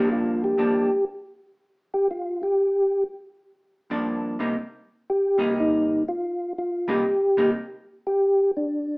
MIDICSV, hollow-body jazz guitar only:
0, 0, Header, 1, 2, 480
1, 0, Start_track
1, 0, Tempo, 496689
1, 558, Time_signature, 4, 2, 24, 8
1, 8675, End_track
2, 0, Start_track
2, 0, Title_t, "Hollow-body jazz guitar"
2, 0, Program_c, 0, 26
2, 0, Note_on_c, 0, 43, 68
2, 0, Note_on_c, 0, 53, 72
2, 0, Note_on_c, 0, 58, 75
2, 0, Note_on_c, 0, 62, 75
2, 523, Note_off_c, 0, 43, 0
2, 527, Note_off_c, 0, 53, 0
2, 529, Note_off_c, 0, 58, 0
2, 529, Note_off_c, 0, 62, 0
2, 556, Note_on_c, 0, 43, 50
2, 562, Note_on_c, 0, 53, 54
2, 567, Note_on_c, 0, 58, 53
2, 571, Note_on_c, 0, 62, 57
2, 850, Note_off_c, 0, 43, 0
2, 853, Note_off_c, 0, 53, 0
2, 855, Note_off_c, 0, 58, 0
2, 857, Note_off_c, 0, 62, 0
2, 3770, Note_on_c, 0, 43, 57
2, 3777, Note_on_c, 0, 53, 61
2, 3778, Note_on_c, 0, 58, 62
2, 3780, Note_on_c, 0, 62, 74
2, 4216, Note_off_c, 0, 43, 0
2, 4220, Note_off_c, 0, 53, 0
2, 4221, Note_off_c, 0, 58, 0
2, 4221, Note_off_c, 0, 62, 0
2, 4244, Note_on_c, 0, 48, 54
2, 4250, Note_on_c, 0, 55, 53
2, 4254, Note_on_c, 0, 58, 53
2, 4255, Note_on_c, 0, 63, 60
2, 4386, Note_off_c, 0, 48, 0
2, 4389, Note_off_c, 0, 55, 0
2, 4391, Note_off_c, 0, 58, 0
2, 4391, Note_off_c, 0, 63, 0
2, 5198, Note_on_c, 0, 48, 64
2, 5206, Note_on_c, 0, 55, 71
2, 5209, Note_on_c, 0, 58, 65
2, 5213, Note_on_c, 0, 63, 71
2, 5807, Note_off_c, 0, 48, 0
2, 5811, Note_off_c, 0, 55, 0
2, 5813, Note_off_c, 0, 58, 0
2, 5814, Note_off_c, 0, 63, 0
2, 6646, Note_on_c, 0, 48, 62
2, 6647, Note_on_c, 0, 55, 75
2, 6654, Note_on_c, 0, 58, 73
2, 6659, Note_on_c, 0, 63, 66
2, 6786, Note_off_c, 0, 48, 0
2, 6787, Note_off_c, 0, 55, 0
2, 6790, Note_off_c, 0, 58, 0
2, 6793, Note_off_c, 0, 63, 0
2, 7124, Note_on_c, 0, 48, 58
2, 7125, Note_on_c, 0, 55, 59
2, 7132, Note_on_c, 0, 58, 69
2, 7133, Note_on_c, 0, 63, 66
2, 7265, Note_off_c, 0, 48, 0
2, 7265, Note_off_c, 0, 55, 0
2, 7269, Note_off_c, 0, 58, 0
2, 7270, Note_off_c, 0, 63, 0
2, 8675, End_track
0, 0, End_of_file